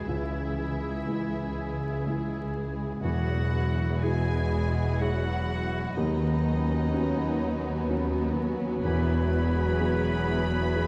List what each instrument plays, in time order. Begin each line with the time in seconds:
Already playing: harp E3 G#3 E4 F#4 G#4 E5 F#5 G#5, viola section E3 G#3, felt piano G#3 E4 F#4, violin section E4, flute section G#6
0.07 double bass section C#2, felt piano C#2 C#3, cello section C#2, harp C#3, french horn section E3, oboe E4, violin section G#4 E5, clarinet G#4
0.33 harp C#4
0.58 harp G#3
0.83 harp G#4
1.07 felt piano G#3 E4 G#4, harp E4
1.32 harp E5
1.57 harp G#5
1.81 harp E5
2.06 felt piano G#3 E4 G#4, harp G#4
2.30 harp E4
2.55 harp G#3
2.79 harp C#4
3.03 double bass section E1, felt piano E1 E2, cello section E2, harp E3, viola section E3 G#3, french horn section F#3, violin section E4 F#4 F#5, oboe F#4, flute section B5
3.28 harp G#3
3.53 harp E4
3.76 harp G#4
4.01 felt piano F#3 E4 G#4, french horn section G#3, oboe G#4, harp E5, violin section G#5
4.25 harp F#5
4.49 harp G#5
4.74 harp F#5
4.99 french horn section F#3, felt piano F#3 E4 G#4, oboe F#4, harp E5, violin section F#5
5.23 harp F#4
5.47 harp E4
5.73 harp G#3
5.95 double bass section D#2, cello section D#2, felt piano D#2 D#3, harp D#3, french horn section D#3, viola section F#3 B3, violin section C#4 D#5, oboe D#4
6.21 harp B3
6.44 harp C#4
6.69 harp B4
6.92 felt piano F#3 C#4 B4, clarinet F#4, harp C#5
7.17 harp F#5
7.41 harp B5
7.65 harp F#5
7.90 felt piano F#3 C#4 B4, harp C#5
8.14 harp F#4
8.37 harp C#4
8.61 harp B3
8.82 double bass section E1, felt piano E1 E2, cello section E2, harp E3, french horn section B3, violin section E4 G#4 B5, oboe B4, flute section G#6
9.08 harp G#3
9.31 harp E4
9.55 harp G#4
9.80 felt piano F#3 B3 G#4
10.03 harp F#5
10.27 harp G#5
10.51 harp F#5
10.75 felt piano F#3 B3 G#4